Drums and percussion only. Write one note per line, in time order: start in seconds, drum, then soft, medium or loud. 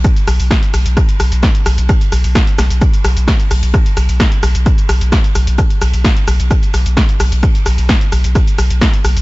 0.04 kick loud
0.04 cross-stick medium
0.04 closed hi-hat medium
0.04 ride loud
0.04 shaker soft
0.16 closed hi-hat medium
0.16 ride soft
0.28 cross-stick loud
0.28 open hi-hat loud
0.28 ride medium
0.28 shaker medium
0.40 open hi-hat medium
0.40 shaker soft
0.51 kick loud
0.51 cross-stick loud
0.51 snare loud
0.51 closed hi-hat medium
0.51 ride medium
0.51 shaker soft
0.63 closed hi-hat medium
0.74 cross-stick medium
0.74 open hi-hat loud
0.74 ride medium
0.74 shaker medium
0.86 closed hi-hat medium
0.86 shaker soft
0.97 kick loud
0.97 cross-stick loud
0.97 closed hi-hat medium
0.97 ride medium
0.97 shaker soft
1.09 closed hi-hat medium
1.09 shaker soft
1.19 cross-stick medium
1.19 open hi-hat loud
1.19 ride medium
1.19 shaker medium
1.32 closed hi-hat medium
1.32 ride soft
1.32 shaker soft
1.42 kick loud
1.42 cross-stick medium
1.42 snare loud
1.42 closed hi-hat medium
1.42 ride medium
1.42 shaker soft
1.55 closed hi-hat medium
1.66 cross-stick loud
1.66 open hi-hat loud
1.66 ride medium
1.66 shaker medium
1.78 closed hi-hat medium
1.78 shaker soft
1.89 kick loud
1.89 cross-stick loud
1.89 closed hi-hat medium
1.89 ride medium
1.89 shaker soft
2.01 closed hi-hat medium
2.01 shaker soft
2.12 cross-stick medium
2.12 open hi-hat loud
2.12 ride medium
2.12 shaker medium
2.24 open hi-hat medium
2.24 shaker soft
2.35 kick loud
2.35 cross-stick medium
2.35 snare loud
2.35 closed hi-hat medium
2.35 ride medium
2.35 shaker soft
2.47 closed hi-hat medium
2.58 cross-stick loud
2.58 snare medium
2.58 open hi-hat loud
2.58 ride medium
2.58 shaker medium
2.70 closed hi-hat medium
2.70 ride soft
2.70 shaker soft
2.81 kick loud
2.81 cross-stick medium
2.81 closed hi-hat medium
2.81 ride medium
2.81 shaker soft
2.94 closed hi-hat medium
2.94 shaker soft
3.04 cross-stick loud
3.04 snare medium
3.04 open hi-hat loud
3.04 ride medium
3.04 shaker medium
3.17 closed hi-hat medium
3.17 shaker soft
3.28 kick loud
3.28 cross-stick medium
3.28 snare loud
3.28 closed hi-hat medium
3.28 ride medium
3.28 shaker soft
3.40 closed hi-hat medium
3.51 cross-stick medium
3.51 open hi-hat loud
3.51 open hi-hat medium
3.51 shaker medium
3.62 closed hi-hat medium
3.62 ride soft
3.62 shaker soft
3.74 kick loud
3.74 cross-stick loud
3.74 closed hi-hat medium
3.74 ride loud
3.74 shaker soft
3.86 closed hi-hat medium
3.86 ride soft
3.97 cross-stick medium
3.97 open hi-hat loud
3.97 ride medium
3.97 shaker medium
4.09 open hi-hat medium
4.09 shaker soft
4.20 kick loud
4.20 cross-stick loud
4.20 snare loud
4.20 closed hi-hat medium
4.20 ride medium
4.20 shaker soft
4.32 closed hi-hat medium
4.43 cross-stick loud
4.43 open hi-hat loud
4.43 ride medium
4.43 shaker medium
4.55 closed hi-hat medium
4.55 shaker soft
4.66 kick loud
4.66 cross-stick medium
4.66 closed hi-hat medium
4.66 ride medium
4.66 shaker soft
4.78 closed hi-hat medium
4.78 shaker soft
4.89 cross-stick loud
4.89 open hi-hat loud
4.89 ride medium
4.89 shaker medium
5.01 closed hi-hat medium
5.01 ride soft
5.01 shaker soft
5.12 kick loud
5.12 cross-stick loud
5.12 snare loud
5.12 closed hi-hat medium
5.12 ride medium
5.12 shaker soft
5.24 closed hi-hat medium
5.35 cross-stick medium
5.35 open hi-hat loud
5.35 ride medium
5.35 shaker medium
5.47 closed hi-hat medium
5.47 shaker soft
5.58 kick loud
5.58 cross-stick loud
5.58 closed hi-hat medium
5.58 ride medium
5.58 shaker soft
5.70 closed hi-hat medium
5.82 cross-stick medium
5.82 open hi-hat loud
5.82 ride medium
5.82 shaker medium
5.93 open hi-hat medium
5.93 shaker soft
6.04 kick loud
6.04 cross-stick medium
6.04 snare loud
6.04 closed hi-hat medium
6.04 ride medium
6.04 shaker soft
6.17 closed hi-hat medium
6.28 cross-stick medium
6.28 open hi-hat loud
6.28 ride medium
6.28 shaker medium
6.40 closed hi-hat medium
6.40 ride soft
6.40 shaker soft
6.51 kick loud
6.51 cross-stick medium
6.51 closed hi-hat medium
6.51 ride medium
6.51 shaker soft
6.63 closed hi-hat medium
6.63 shaker soft
6.73 cross-stick medium
6.73 snare medium
6.73 open hi-hat loud
6.73 ride medium
6.73 shaker medium
6.86 closed hi-hat medium
6.86 shaker soft
6.97 kick loud
6.97 cross-stick medium
6.97 snare loud
6.97 closed hi-hat medium
6.97 ride medium
6.97 shaker soft
7.09 closed hi-hat medium
7.20 cross-stick medium
7.20 open hi-hat loud
7.20 open hi-hat medium
7.20 shaker medium
7.32 closed hi-hat medium
7.32 ride soft
7.32 shaker soft
7.43 kick loud
7.43 cross-stick medium
7.43 closed hi-hat medium
7.43 ride loud
7.43 shaker soft
7.54 closed hi-hat medium
7.54 ride soft
7.66 cross-stick medium
7.66 open hi-hat loud
7.66 ride medium
7.66 shaker medium
7.78 open hi-hat medium
7.78 shaker soft
7.89 kick loud
7.89 cross-stick medium
7.89 snare loud
7.89 closed hi-hat medium
7.89 ride medium
7.89 shaker soft
8.01 closed hi-hat medium
8.12 cross-stick medium
8.12 open hi-hat loud
8.12 ride medium
8.12 shaker medium
8.24 closed hi-hat medium
8.24 shaker soft
8.35 kick loud
8.35 cross-stick medium
8.35 closed hi-hat medium
8.35 ride medium
8.35 shaker soft
8.47 closed hi-hat medium
8.47 shaker soft
8.58 cross-stick medium
8.58 open hi-hat loud
8.58 ride medium
8.58 shaker medium
8.70 closed hi-hat medium
8.70 ride soft
8.70 shaker soft
8.81 kick loud
8.81 cross-stick medium
8.81 snare loud
8.81 closed hi-hat medium
8.81 ride medium
8.81 shaker soft
8.94 closed hi-hat medium
9.05 cross-stick medium
9.05 open hi-hat loud
9.05 ride medium
9.05 shaker medium
9.17 closed hi-hat medium
9.17 shaker soft